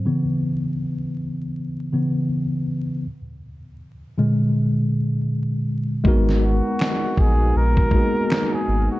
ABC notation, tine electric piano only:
X:1
M:4/4
L:1/8
Q:"Swing 16ths" 1/4=80
K:G#m
V:1 name="Tine electric piano"
[C,E,B,]4- [C,E,B,] [C,E,B,] z2 | z3 [A,,=D,G,] z4 | [G,A,B,DFA]3 z2 [G,A,B,DFG]2 z |]